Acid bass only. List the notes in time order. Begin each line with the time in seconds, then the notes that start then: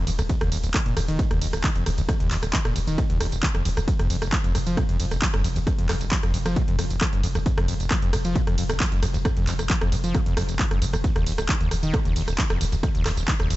0.07 D#2
0.19 C#2
0.29 D#2
0.41 D#2
0.52 D#2
0.64 D#1
0.74 D#3
0.86 A#2
0.97 D#2
1.08 D#3
1.19 G#2
1.31 D#2
1.42 D#2
1.53 D#1
1.64 D#3
1.76 F2
1.86 D#2
1.98 C#2
2.09 D#2
2.20 D#2
2.31 D#2
2.43 D#1
2.53 D#3
2.65 A#2
2.76 D#2
2.87 D#3
2.98 G#2
3.10 D#2
3.20 D#2
3.32 D#1
3.43 D#3
3.55 F2
3.65 D#2
3.77 C#2
3.88 F2
3.99 F2
4.10 F2
4.22 F1
4.32 F3
4.44 F2
4.55 F2
4.67 F3
4.77 A#2
4.89 F2
5.00 F2
5.11 F1
5.22 F3
5.34 F#2
5.44 F2
5.56 D#2
5.67 F2
5.78 F2
5.89 F2
6.01 F1
6.12 F3
6.23 F2
6.34 F2
6.46 F3
6.56 A#2
6.68 F2
6.79 F2
6.90 F1
7.01 F3
7.13 F#2
7.23 F2
7.35 D#2
7.46 F2
7.58 F2
7.68 F2
7.80 F1
7.91 F3
8.02 F2
8.13 F2
8.25 F3
8.36 A#2
8.47 F2
8.58 F2
8.70 F1
8.80 F3
8.92 F#2
9.03 F2
9.14 D#2
9.25 F2
9.37 F2
9.47 F2
9.59 F1
9.70 F3
9.81 F2
9.92 F2
10.04 F3
10.15 A#2
10.26 F2
10.37 F2
10.49 F1
10.59 F3
10.71 F#2
10.82 F2
10.93 D#2
11.04 D#2
11.16 D#2
11.26 D#2
11.38 D#1
11.49 D#3
11.61 D#2
11.71 D#2
11.83 D#3
11.94 G#2
12.05 D#2
12.16 D#2
12.28 D#1
12.38 D#3
12.50 F2
12.61 D#2
12.72 C#2
12.83 D#2
12.95 D#2
13.06 D#2
13.17 D#1
13.28 D#3
13.40 D#2
13.50 D#2